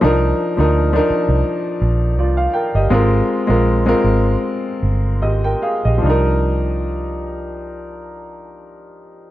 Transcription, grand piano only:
0.01 0.48 F3 medium
0.01 0.48 D4 medium
0.01 0.49 D#4 medium
0.01 0.49 A#4 medium
0.57 0.87 F3 medium
0.57 0.87 D4 medium
0.57 0.88 D#4 medium
0.57 0.88 A#4 medium
0.93 2.13 F3 medium
0.93 2.13 D4 medium
0.93 2.14 D#4 medium
0.93 1.83 A#4 medium
2.19 2.37 F4 medium
2.19 2.37 D5 medium
2.37 2.53 F5 medium
2.53 2.73 A#4 medium
2.53 2.73 G5 medium
2.75 3.10 G4 medium
2.75 3.10 D#5 medium
2.90 3.38 G#3 medium
2.90 3.39 C4 medium
2.90 3.39 F4 medium
2.90 3.40 A#4 medium
3.47 3.79 G#3 medium
3.47 3.80 C4 medium
3.47 3.81 F4 medium
3.47 3.81 A#4 medium
3.86 5.16 G#3 medium
3.86 5.17 C4 medium
3.86 5.18 F4 medium
3.86 5.18 A#4 medium
5.22 5.43 G4 soft
5.22 5.43 D#5 medium
5.44 5.62 A#4 medium
5.44 5.62 G5 medium
5.62 5.84 G#4 medium
5.62 5.83 F5 medium
5.85 6.24 G4 soft
5.85 6.24 D#5 medium
5.98 9.31 F3 medium
5.98 9.31 D4 medium
6.06 9.31 D#4 medium
6.06 9.31 A#4 medium

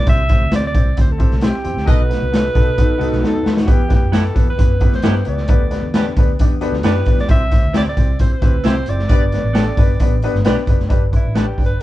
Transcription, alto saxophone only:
0.10 0.51 E5 loud
0.56 0.65 D5 loud
0.67 0.97 D5 loud
1.01 1.13 C5 medium
1.12 1.47 A4 medium
1.45 1.92 G4 loud
1.91 3.28 B4 loud
3.26 3.59 A4 medium
3.62 3.73 F#4 medium
3.71 3.93 G4 loud
3.95 4.14 G4 medium
4.16 4.47 A4 medium
4.50 4.91 B4 medium
4.95 5.25 C5 medium
5.28 6.13 D5 medium
6.86 7.16 B4 loud
7.21 7.30 D5 medium
7.31 7.72 E5 loud
7.77 7.82 D5 loud
7.89 8.19 D5 medium
8.21 8.34 C5 medium
8.33 8.69 B4 medium
8.67 8.91 C5 loud
8.90 10.69 D5 medium
11.16 11.40 E4 medium
11.38 11.65 G4 medium
11.66 11.82 B4 loud

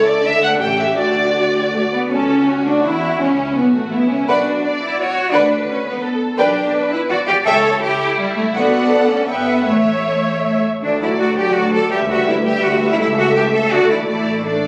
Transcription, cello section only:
0.00 0.22 C#3 soft
0.24 0.60 D3 medium
0.60 0.98 A2 medium
0.97 1.73 D3 soft
1.74 1.82 A3 medium
1.93 2.12 B3 medium
2.12 2.68 C#4 medium
2.67 2.86 D4 medium
2.86 3.22 E4 medium
3.22 3.58 C#4 medium
3.58 3.75 B3 medium
3.76 3.93 A3 medium
3.93 4.11 B3 medium
4.11 4.29 C#4 medium
4.29 4.80 D4 medium
4.81 4.98 E4 medium
4.99 5.33 F#4 medium
5.33 5.69 D4 medium
5.69 5.86 C#4 medium
5.87 6.04 B3 medium
6.39 6.90 D4 medium
6.93 7.00 E4 medium
7.10 7.18 F#4 medium
7.29 7.36 G4 medium
7.46 7.81 A4 medium
7.82 8.18 G4 medium
8.19 8.37 G3 medium
8.37 8.44 A3 medium
8.55 9.09 B3 medium
9.11 9.29 C#4 medium
9.29 9.67 B3 medium
9.68 10.62 A3 medium
10.83 11.00 D4 medium
11.02 11.09 E4 medium
11.19 11.37 F#4 medium
11.37 11.55 G4 medium
11.55 11.73 F#4 medium
11.73 11.91 A4 medium
11.91 11.99 G4 medium
12.10 12.28 F#4 medium
12.28 12.35 E4 medium
12.45 12.63 G4 medium
12.63 12.90 F#4 medium
12.91 12.99 E4 medium
13.00 13.07 E4 medium
13.17 13.35 F#4 medium
13.35 13.43 G4 medium
13.54 13.71 A4 medium
13.72 13.90 F#4 loud
13.90 13.97 E4 medium
14.08 14.45 E4 medium
14.46 14.67 D4 medium

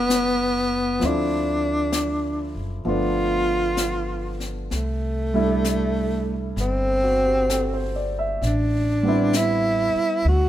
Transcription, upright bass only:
0.00 0.98 F#1 medium
1.02 2.52 D2 medium
2.55 2.83 F#1 soft
2.85 4.67 G1 medium
4.71 6.53 C2 medium
6.56 8.37 G1 medium
8.42 9.91 A1 medium
9.95 muted upright bass stroke soft
10.25 10.49 D2 medium

